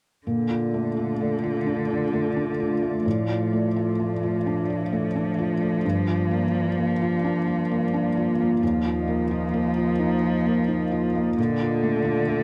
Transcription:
0.27 A#2 D3 A3 F4 D5
0.50 F4
0.74 A3
0.97 F4
1.21 A3
1.44 F4
1.66 D4
1.90 F4
2.13 A3
2.37 D4
2.60 F4
2.82 A3
3.05 A2 F3
3.29 F4
3.53 A3
3.76 F4
4.00 A3
4.23 F4
4.47 D4
4.70 F4
4.92 A3
5.16 D4
5.38 F4
5.62 A3
5.85 G2 A#3 F4 D5
6.08 F4
6.31 A#3
6.55 F4
6.78 A#3
7.02 F4
7.25 D4
7.47 F4
7.71 A#3
7.94 D4
8.17 F4
8.40 A#3
8.62 D#2 F3 D#5
8.86 F4
9.08 A#3
9.31 F4
9.54 A#3
9.77 F4
10.00 D#4
10.23 F4
10.46 A#3
10.68 D#4
10.92 F4
11.15 A#3
11.38 A#2 D3 A3 F4 D5
11.61 F4
11.83 A3
12.05 F4
12.28 A3

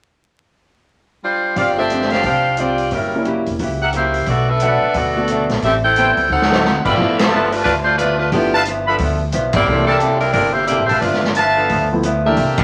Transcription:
1.24 G3 D4 F4 C5
1.56 G1 G2 F3 C4 D4 F4 G4 C5 D5 F5, kick, open hi-hat
1.77 A3 C4 D4 F4 G4 C5 E5
1.90 G2 F3 C4 D4, closed hi-hat
2.01 snare
2.10 D4 G4 C5 F5, snare, open hi-hat
2.23 C2 G2 F3 C4 D4 G4 C5 F5, kick, open hi-hat
2.28 D4
2.57 G2 F3 C4 F4 G4 D5, closed hi-hat
2.61 D4
2.78 open hi-hat
2.91 F#1 F#3 G3 A#3 C#4 E4 A#4, kick, open hi-hat
2.95 E4 G4
3.15 G3 A#3 C#4 E4
3.25 F#3 A#3 E4 G4, closed hi-hat
3.46 E1, open hi-hat
3.59 C#2 F#3 A#3 E4 G4, kick, open hi-hat
3.82 G4 A#4 E5 F#5
3.93 F#3 A#3 E4 G4 C5, closed hi-hat
3.97 E4
4.14 open hi-hat
4.26 B1 B2 F#3 A3 B3 D5, kick, open hi-hat
4.30 D4 F#4 A4
4.50 D4 A4 B4 E5
4.60 B2 F#3 A3 A4 B4 D5 F#5, closed hi-hat
4.64 D4
4.83 muted upright bass stroke
4.94 D2 B2 F#3 A3 B3 F#4 A4 D5, kick, open hi-hat
4.98 D4
5.16 A3 B3 D4 F#4
5.28 B2 F#3 A3 D4, closed hi-hat
5.49 A#1, snare, open hi-hat
5.62 A1 A2 G3 C4 G4 A4 E5, kick, open hi-hat
5.66 E4
5.84 E4 A4 C5 G5
5.96 A2 G3 B3 C4 E4 A4 C5 E5 G5, closed hi-hat
6.17 C#2, open hi-hat
6.30 D2 D3 F#3 C4 D#4 A4 C5 F#5
6.42 snare
6.50 F#3 A3 C4 D#4, snare
6.65 D3 F#3 C4 D#4, snare
6.84 G3 B3 F4 A4 B4 D5 E5 F5 B5, kick, crash
6.98 G1 G2 F3 A3 B3 E4, kick
7.19 F3 B3 D4 A4, snare, ride
7.32 G2 F3 B3 E4 B4 E5 F5 A5
7.52 A3 D4 F4 B4, open hi-hat
7.64 D2 G2 A3 D4 F4 B4, kick, open hi-hat
7.68 F3 B3 E4
7.84 A3 D4 F4 C5
7.97 G2 F3 A3 B3 D4 F4 B4, closed hi-hat
8.02 E4
8.18 A3 D4 F4 B4
8.32 G1 G2 F3 A3 B3 D4 E4 G4, kick, open hi-hat
8.54 B4 E5 F5 A5
8.65 G2 F3 B3, closed hi-hat
8.69 E4
8.86 F3 B3 D4 A4 B4 E5 F5 B5
8.98 D2 G2 F3 B3, kick, open hi-hat
9.03 E4
9.32 B1 G2 F3 B3 E4, closed hi-hat
9.53 A#3 E4 G4 D5, kick, ride
9.66 C2 C3 E3 A3 A#3 D4 E4 A4
9.87 G3 D4 E4 A4 A#4 D5 E5 A5
10.00 C3 A#3 E4 A4, closed hi-hat
10.20 G3 D4 E4 A#4, open hi-hat
10.33 G1 C3 G3 A#3 D4 E4 A#4, kick, open hi-hat
10.38 A4
10.52 A#3 E4 G4 C5
10.66 C3 A#3 E4 G4 D5, closed hi-hat
10.71 A4
10.80 A1
10.86 A#3 E4 G4 C5 E5 F5 A5, open hi-hat
10.90 G#1 B4
10.99 G1 G2 A3 D4 F4 B4, kick, open hi-hat
11.03 F3 B3 E4
11.14 snare
11.24 snare
11.35 G2 F3 B3 E4 B4 E5 F5 A5, closed hi-hat
11.56 F3 B3 D4 A4
11.69 D2 G2 F3 B3 E4, kick, open hi-hat
11.92 F3 A3 B3 E4
12.03 G2 F3 B3 E4, closed hi-hat
12.25 E3 A3 A#3 D4 G4 A#4 E5
12.37 C2 C3 A#3 E4 A4, kick, open hi-hat
12.58 G3 D4 E4 A#4, kick, ride

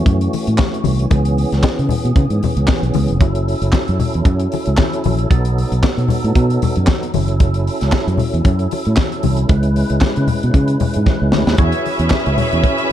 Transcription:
Already playing: E3 A3 C#4 F#4
0.06 F#2, kick, closed hi-hat, muted conga
0.21 closed hi-hat
0.33 open hi-hat, muted conga
0.47 A2, closed hi-hat
0.58 kick, snare, clap, high conga
0.74 closed hi-hat
0.84 C2, open hi-hat, high conga
0.99 closed hi-hat
1.11 C#2 B3 G#4, kick, closed hi-hat, muted conga
1.25 closed hi-hat
1.37 open hi-hat, muted conga
1.52 C#2, snare, closed hi-hat
1.63 kick, snare, clap, high conga
1.79 C#3, closed hi-hat
1.89 open hi-hat, low conga
2.05 B2, closed hi-hat
2.16 C#3, kick, closed hi-hat, muted conga
2.30 G#2, closed hi-hat
2.43 open hi-hat, muted conga, low conga
2.56 C#2, closed hi-hat
2.67 kick, snare, clap, high conga
2.83 B1, closed hi-hat
2.94 C#2, open hi-hat, high conga
3.08 F1, closed hi-hat
3.21 F#1 F#3 E4 A4, kick, closed hi-hat, muted conga
3.35 closed hi-hat
3.48 open hi-hat
3.62 F#1, closed hi-hat
3.72 muted fingered electric bass stroke, kick, snare, clap, high conga
3.88 F#2, closed hi-hat
3.99 open hi-hat, low conga
4.14 E2, closed hi-hat
4.25 F#2, kick, closed hi-hat, muted conga
4.39 closed hi-hat
4.52 open hi-hat, muted conga
4.66 C#2, closed hi-hat
4.77 kick, snare, clap, high conga
4.93 closed hi-hat
5.04 A#1, open hi-hat, high conga
5.19 closed hi-hat
5.30 B1 F#3 B3 D#4 A4, kick, closed hi-hat, muted conga
5.45 closed hi-hat
5.58 open hi-hat, muted conga
5.72 B1, closed hi-hat
5.83 kick, snare, clap, high conga
5.98 B2, closed hi-hat
6.08 open hi-hat, low conga
6.24 A2, closed hi-hat
6.35 B2, kick, closed hi-hat, muted conga
6.50 closed hi-hat
6.62 open hi-hat, muted conga, low conga
6.76 F#2, closed hi-hat
6.87 kick, snare, clap, high conga
7.03 closed hi-hat
7.14 F#1 C#4 E4 A4, open hi-hat, high conga
7.28 closed hi-hat
7.40 kick, closed hi-hat, muted conga
7.54 closed hi-hat
7.67 open hi-hat
7.81 C#2, snare, closed hi-hat
7.92 kick, snare, clap, high conga
8.07 F#2, closed hi-hat
8.18 open hi-hat, low conga
8.34 E2, closed hi-hat
8.44 F#2, kick, closed hi-hat, muted conga
8.59 closed hi-hat
8.71 open hi-hat, muted conga
8.85 A2, closed hi-hat
8.96 kick, snare, clap, high conga
9.12 closed hi-hat
9.23 C2, open hi-hat, high conga
9.37 closed hi-hat
9.48 C#2 G#3 B4, kick, closed hi-hat, muted conga
9.63 closed hi-hat
9.76 open hi-hat, muted conga
9.90 C#2, closed hi-hat
10.01 kick, snare, clap, high conga
10.16 C#3, closed hi-hat
10.27 open hi-hat, low conga
10.43 B2, closed hi-hat
10.54 C#3, kick, closed hi-hat, muted conga
10.68 closed hi-hat
10.80 open hi-hat, muted conga, low conga
10.94 G#2, closed hi-hat
11.06 kick, snare, high conga
11.22 C#2
11.32 D2, snare, high conga
11.47 D#2, snare
11.58 E2 F#3 C#4 E4 G#4 B4 E5, kick, closed hi-hat, muted conga
11.72 closed hi-hat
11.86 open hi-hat, muted conga
11.99 E2, closed hi-hat
12.10 kick, snare, clap, high conga
12.26 C#2, closed hi-hat
12.38 open hi-hat, low conga
12.53 E2, closed hi-hat
12.64 kick, closed hi-hat, muted conga
12.78 closed hi-hat

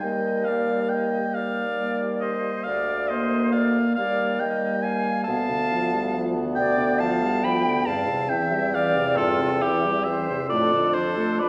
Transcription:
0.00 D#2 G3 A#3 D#5 G5
0.45 G3 A#3 D5 F5
0.89 D#5 G5
1.34 D#2 D5 F5
1.79 G3 A#3
2.20 C5 D#5
2.64 D2 D5 F5
3.08 A#3 C5 D#5
3.52 D5 F5
3.95 D#2 G3 A#3 D5 F5
4.40 G3 A#3 D#5 G5
4.83 F5 G#5
5.24 D2 F5 A5
5.28 B2 B3
5.50 D3
5.72 F3
5.93 G3
6.14 F3
6.37 D3
6.56 B2 D5 G5
6.79 D3
6.99 F3 F5 A5
7.23 G3
7.43 F3 G5 B5
7.66 D3
7.86 E2 G2 C4 F5 A5
8.08 C3
8.29 E3 E5 G5
8.53 G3
8.73 E3 D5 F5
8.96 C3
9.16 G2 F4 A4
9.39 C3
9.62 E3 E4 G4
9.86 G3
10.04 E3 C5 E5
10.30 C3
10.48 F2 A2 D4 A4 D5
10.73 D3
10.93 F3 A4 C5
11.17 A3
11.39 F3 B4 D5

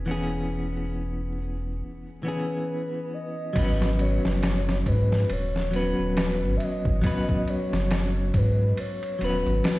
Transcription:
Already playing: E1
0.06 E3 B3 C#4
0.11 G#4
2.23 E3 B3 C#4 B4
2.28 G#4
3.14 D#5
3.53 G#1 F#3 B3 C#4, kick, crash, ride
3.59 B4
3.82 snare
3.99 C#5, ride
4.25 F#1, snare
4.43 snare, ride
4.69 snare
4.86 G#2 B4, kick, ride
5.12 snare
5.30 D#1 C#5, ride
5.56 snare
5.71 F#3 B3 C#4, ride
5.76 B4
5.98 D#1
6.17 snare, ride
6.42 G#1
6.57 E5, ride
6.64 D#5
6.85 G#1, kick
7.02 F#3 B3 C#4, kick, ride
7.07 B4
7.29 kick
7.48 C#5, ride
7.73 F#1, snare
7.91 snare, ride
8.34 G#2 B4, kick, ride
8.77 C#5, ride
9.03 ride
9.19 D#1 F#3 B3 C#4, ride
9.24 B4
9.46 G#1, ride
9.64 snare, ride

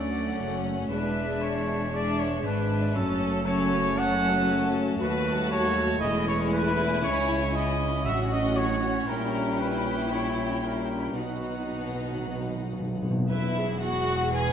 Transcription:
Already playing: D2 F#3 A3 C#4 D5 F#5
0.39 F#1 F#2
0.90 E1 E2 G#3 D4 B4 E5
1.42 C#5
1.92 G#3 D4 D5 E5
2.18 C#5
2.43 G#1 G#2 G#3 D4 B4 E5
2.95 F#1 F#2 F#3 A3 C#4 A4 A5
3.46 F#3 C#4 C#5 A5
3.97 F#3 C#4 F#5 A5
4.99 D#2 F#3 F#4 B4 A5
5.49 C#5
6.00 E1 E2 G#3 E4 D#5 G#5
6.26 C#5
6.52 B4
7.03 C#2 G#3 C#4 C#5
7.54 D#5
8.05 A1 A2 F#3 C#4 F#4 E5 F#5
8.31 D#5
8.56 C#5
9.07 A#1 A#2 G3 C#4 E4 A#4 G5
9.59 B4
10.10 G3 C#4 C#5
10.63 G3 C#4 A#4
11.17 B1 B2 F#3 B3 D#4 F#4 F#5
11.25 B2
11.33 B2
11.41 B2
11.56 B2
11.72 B2
11.79 B2
11.87 B2
11.94 B2
12.02 B2
12.11 B2
12.18 B2
12.26 B2
12.33 B2
12.41 B2
12.48 B2
12.56 B2
12.64 B2
12.72 B2
12.80 B2
12.87 B2
12.95 B2
13.02 B2
13.11 B2
13.18 B2
13.30 E1 E2 E4 B4 E5
13.58 G#4
13.82 F#4 F#5
14.35 G#4 B4 G#5

